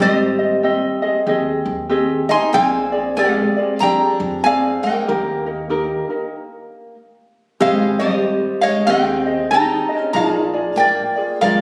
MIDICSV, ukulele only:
0, 0, Header, 1, 2, 480
1, 0, Start_track
1, 0, Time_signature, 4, 2, 24, 8
1, 0, Key_signature, -3, "major"
1, 0, Tempo, 634249
1, 5765, Key_signature, -4, "major"
1, 8786, End_track
2, 0, Start_track
2, 0, Title_t, "Ukulele"
2, 0, Program_c, 0, 24
2, 2, Note_on_c, 0, 67, 77
2, 7, Note_on_c, 0, 60, 81
2, 12, Note_on_c, 0, 75, 76
2, 284, Note_off_c, 0, 75, 0
2, 293, Note_on_c, 0, 75, 56
2, 294, Note_off_c, 0, 67, 0
2, 297, Note_off_c, 0, 60, 0
2, 306, Note_on_c, 0, 60, 41
2, 475, Note_off_c, 0, 60, 0
2, 478, Note_off_c, 0, 75, 0
2, 479, Note_on_c, 0, 67, 75
2, 484, Note_on_c, 0, 60, 65
2, 487, Note_on_c, 0, 75, 79
2, 764, Note_off_c, 0, 75, 0
2, 773, Note_off_c, 0, 67, 0
2, 773, Note_on_c, 0, 75, 57
2, 775, Note_off_c, 0, 60, 0
2, 779, Note_on_c, 0, 68, 51
2, 786, Note_on_c, 0, 60, 47
2, 956, Note_on_c, 0, 67, 59
2, 957, Note_off_c, 0, 60, 0
2, 961, Note_off_c, 0, 75, 0
2, 964, Note_off_c, 0, 68, 0
2, 966, Note_on_c, 0, 60, 55
2, 972, Note_on_c, 0, 68, 66
2, 975, Note_on_c, 0, 75, 74
2, 1431, Note_off_c, 0, 67, 0
2, 1434, Note_off_c, 0, 60, 0
2, 1434, Note_off_c, 0, 75, 0
2, 1434, Note_on_c, 0, 67, 67
2, 1437, Note_on_c, 0, 60, 75
2, 1441, Note_off_c, 0, 68, 0
2, 1443, Note_on_c, 0, 75, 83
2, 1444, Note_on_c, 0, 68, 79
2, 1724, Note_off_c, 0, 75, 0
2, 1731, Note_off_c, 0, 67, 0
2, 1732, Note_off_c, 0, 60, 0
2, 1732, Note_off_c, 0, 68, 0
2, 1733, Note_on_c, 0, 75, 53
2, 1741, Note_on_c, 0, 68, 48
2, 1745, Note_on_c, 0, 60, 40
2, 1908, Note_off_c, 0, 60, 0
2, 1913, Note_off_c, 0, 68, 0
2, 1917, Note_on_c, 0, 60, 69
2, 1919, Note_off_c, 0, 75, 0
2, 1922, Note_on_c, 0, 68, 79
2, 1922, Note_on_c, 0, 74, 77
2, 2201, Note_off_c, 0, 74, 0
2, 2210, Note_on_c, 0, 74, 62
2, 2211, Note_off_c, 0, 68, 0
2, 2213, Note_off_c, 0, 60, 0
2, 2220, Note_on_c, 0, 68, 55
2, 2227, Note_on_c, 0, 60, 46
2, 2398, Note_off_c, 0, 60, 0
2, 2400, Note_off_c, 0, 68, 0
2, 2401, Note_off_c, 0, 74, 0
2, 2406, Note_on_c, 0, 67, 68
2, 2407, Note_on_c, 0, 60, 77
2, 2409, Note_on_c, 0, 68, 86
2, 2413, Note_on_c, 0, 74, 86
2, 2689, Note_off_c, 0, 74, 0
2, 2697, Note_off_c, 0, 67, 0
2, 2698, Note_off_c, 0, 60, 0
2, 2698, Note_on_c, 0, 74, 47
2, 2699, Note_off_c, 0, 68, 0
2, 2710, Note_on_c, 0, 68, 49
2, 2719, Note_on_c, 0, 60, 44
2, 2885, Note_off_c, 0, 74, 0
2, 2886, Note_off_c, 0, 60, 0
2, 2888, Note_on_c, 0, 67, 56
2, 2891, Note_off_c, 0, 68, 0
2, 2895, Note_on_c, 0, 60, 48
2, 2902, Note_on_c, 0, 68, 64
2, 2903, Note_on_c, 0, 74, 61
2, 3365, Note_off_c, 0, 60, 0
2, 3369, Note_off_c, 0, 68, 0
2, 3374, Note_on_c, 0, 60, 71
2, 3378, Note_off_c, 0, 74, 0
2, 3378, Note_on_c, 0, 68, 75
2, 3381, Note_on_c, 0, 74, 78
2, 3401, Note_off_c, 0, 67, 0
2, 3647, Note_off_c, 0, 68, 0
2, 3655, Note_off_c, 0, 60, 0
2, 3656, Note_on_c, 0, 68, 46
2, 3664, Note_on_c, 0, 60, 41
2, 3666, Note_off_c, 0, 74, 0
2, 3838, Note_off_c, 0, 68, 0
2, 3841, Note_on_c, 0, 67, 77
2, 3842, Note_off_c, 0, 60, 0
2, 3845, Note_on_c, 0, 63, 72
2, 3847, Note_on_c, 0, 70, 82
2, 4124, Note_off_c, 0, 70, 0
2, 4132, Note_off_c, 0, 63, 0
2, 4133, Note_on_c, 0, 70, 51
2, 4135, Note_off_c, 0, 67, 0
2, 4141, Note_on_c, 0, 63, 49
2, 4306, Note_off_c, 0, 63, 0
2, 4310, Note_off_c, 0, 70, 0
2, 4310, Note_on_c, 0, 67, 76
2, 4315, Note_on_c, 0, 63, 84
2, 4319, Note_on_c, 0, 70, 86
2, 4606, Note_off_c, 0, 70, 0
2, 4610, Note_off_c, 0, 67, 0
2, 4613, Note_off_c, 0, 63, 0
2, 4615, Note_on_c, 0, 70, 47
2, 4623, Note_on_c, 0, 63, 39
2, 4804, Note_off_c, 0, 70, 0
2, 4808, Note_off_c, 0, 63, 0
2, 5755, Note_on_c, 0, 67, 79
2, 5757, Note_on_c, 0, 60, 82
2, 5759, Note_on_c, 0, 68, 82
2, 5764, Note_on_c, 0, 75, 80
2, 6035, Note_off_c, 0, 75, 0
2, 6044, Note_on_c, 0, 75, 58
2, 6051, Note_off_c, 0, 60, 0
2, 6052, Note_off_c, 0, 67, 0
2, 6055, Note_off_c, 0, 68, 0
2, 6060, Note_on_c, 0, 60, 46
2, 6522, Note_off_c, 0, 75, 0
2, 6531, Note_on_c, 0, 75, 51
2, 6539, Note_off_c, 0, 60, 0
2, 6541, Note_on_c, 0, 68, 42
2, 6710, Note_off_c, 0, 68, 0
2, 6711, Note_on_c, 0, 67, 77
2, 6716, Note_off_c, 0, 75, 0
2, 6718, Note_on_c, 0, 60, 79
2, 6719, Note_on_c, 0, 68, 73
2, 6725, Note_on_c, 0, 75, 93
2, 6999, Note_off_c, 0, 75, 0
2, 7008, Note_on_c, 0, 75, 49
2, 7009, Note_off_c, 0, 68, 0
2, 7010, Note_off_c, 0, 67, 0
2, 7014, Note_off_c, 0, 60, 0
2, 7018, Note_on_c, 0, 68, 43
2, 7026, Note_on_c, 0, 60, 44
2, 7194, Note_off_c, 0, 60, 0
2, 7199, Note_off_c, 0, 68, 0
2, 7199, Note_on_c, 0, 67, 52
2, 7200, Note_off_c, 0, 75, 0
2, 7203, Note_on_c, 0, 60, 60
2, 7208, Note_on_c, 0, 68, 52
2, 7208, Note_on_c, 0, 75, 67
2, 7475, Note_off_c, 0, 75, 0
2, 7483, Note_off_c, 0, 68, 0
2, 7484, Note_on_c, 0, 75, 56
2, 7490, Note_off_c, 0, 60, 0
2, 7492, Note_on_c, 0, 68, 44
2, 7494, Note_off_c, 0, 67, 0
2, 7500, Note_on_c, 0, 60, 44
2, 7671, Note_off_c, 0, 68, 0
2, 7672, Note_off_c, 0, 60, 0
2, 7672, Note_on_c, 0, 70, 79
2, 7675, Note_on_c, 0, 65, 86
2, 7677, Note_off_c, 0, 75, 0
2, 7681, Note_on_c, 0, 68, 78
2, 7686, Note_on_c, 0, 74, 82
2, 7963, Note_off_c, 0, 74, 0
2, 7970, Note_off_c, 0, 70, 0
2, 7971, Note_off_c, 0, 65, 0
2, 7972, Note_off_c, 0, 68, 0
2, 7972, Note_on_c, 0, 74, 54
2, 7981, Note_on_c, 0, 68, 52
2, 7988, Note_on_c, 0, 65, 49
2, 8437, Note_off_c, 0, 74, 0
2, 8446, Note_on_c, 0, 74, 52
2, 8448, Note_off_c, 0, 68, 0
2, 8454, Note_off_c, 0, 65, 0
2, 8457, Note_on_c, 0, 68, 45
2, 8463, Note_on_c, 0, 65, 40
2, 8631, Note_off_c, 0, 65, 0
2, 8633, Note_off_c, 0, 68, 0
2, 8636, Note_off_c, 0, 74, 0
2, 8636, Note_on_c, 0, 70, 82
2, 8640, Note_on_c, 0, 65, 70
2, 8643, Note_on_c, 0, 68, 79
2, 8645, Note_on_c, 0, 74, 77
2, 8786, Note_off_c, 0, 65, 0
2, 8786, Note_off_c, 0, 68, 0
2, 8786, Note_off_c, 0, 70, 0
2, 8786, Note_off_c, 0, 74, 0
2, 8786, End_track
0, 0, End_of_file